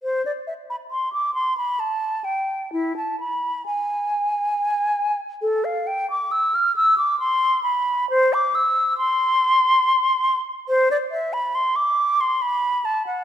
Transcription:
\new Staff \with { instrumentName = "Flute" } { \time 3/4 \key c \major \tempo 4 = 68 c''16 d''16 e''16 b''16 c'''16 d'''16 c'''16 b''16 a''8 g''8 | e'16 a''16 b''8 gis''2 | a'16 f''16 g''16 d'''16 e'''16 f'''16 e'''16 d'''16 c'''8 b''8 | c''16 d'''16 e'''8 c'''4.~ c'''16 r16 |
\key b \phrygian c''16 d''16 e''16 b''16 c'''16 d'''8 c'''16 b''8 a''16 fis''16 | }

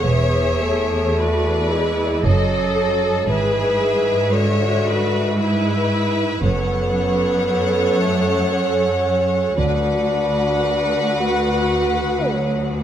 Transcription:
<<
  \new Staff \with { instrumentName = "Violin section" } { \time 3/4 \key e \mixolydian \tempo 4 = 57 e''4 d''4 dis''4 | e''4 e''4 e''4 | fis''2. | fis''2. | }
  \new Staff \with { instrumentName = "Violin section" } { \time 3/4 \key e \mixolydian cis''4 b'4 a'4 | b'4 cis''8 b'8 b'4 | cis''2. | b'2. | }
  \new Staff \with { instrumentName = "Viola section" } { \time 3/4 \key e \mixolydian gis'4 fis'8 e'8 a'4 | gis'4 fis'4 e'4 | a'2. | fis'2. | }
  \new Staff \with { instrumentName = "Bassoon" } { \clef bass \time 3/4 \key e \mixolydian e8 a4 gis8 fis4 | e4 d4 r4 | b4. a8 cis'4 | d'4. fis'4 fis8 | }
  \new Staff \with { instrumentName = "Cello section" } { \clef bass \time 3/4 \key e \mixolydian e,2 fis,4 | gis,2. | fis,2. | d,2. | }
  \new Staff \with { instrumentName = "Double bass section" } { \clef bass \time 3/4 \key e \mixolydian e,,4 r4 fis,,4 | gis,,4 r2 | fis,,4 r2 | d,4 r2 | }
>>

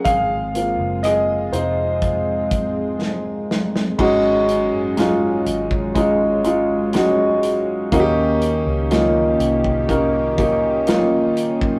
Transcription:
<<
  \new Staff \with { instrumentName = "Grand piano" } { \time 4/4 \key aes \mixolydian \tempo 4 = 61 <aes' f''>4 <aes' ees''>8 <ees' c''>4. r4 | <aes des' ees' ges'>4 <aes des' ees' f'>4 <aes des' ees' f'>8 <aes des' ees' f'>8 <aes des' ees' ges'>4 | <bes des' ees' ges' g'>4 <bes des' ees' f'>4 <bes des' ees' bes'>8 <bes des' ees' g'>8 <bes des' ees' f'>4 | }
  \new Staff \with { instrumentName = "Grand piano" } { \time 4/4 \key aes \mixolydian r8 <bes c' f'>4. r2 | aes,4. r2 r8 | ees4. r2 r8 | }
  \new Staff \with { instrumentName = "Analog synth pad" } { \time 4/4 \key aes \mixolydian << { <aes f'>1 | <ges aes>1 | <ees bes g'>1 | } \\ { c'1 | des'1~ | des'1 | } >> }
  \new Staff \with { instrumentName = "Fingered electric bass" } { \clef bass \time 4/4 \key aes \mixolydian aes,,8. ges,,8. f,,2 r8 | aes,,8. ges,,8. aes,,2~ aes,,8 | ees,8. des,8. c,2 r8 | }
  \new DrumStaff \with { instrumentName = "Drums" } \drummode { \time 4/4 <hh bd>8 hh8 <hh ss>8 hh8 <hh bd>8 <hh bd>8 sn8 sn16 sn16 | <cymc bd>8 hh8 <hh sn>8 hh16 bd16 <hh bd>8 hh8 <hh sn>8 hh8 | <hh bd>8 hh8 <hh sn>8 hh16 bd16 <hh bd>8 <hh bd>8 <hh sn>8 hh16 bd16 | }
>>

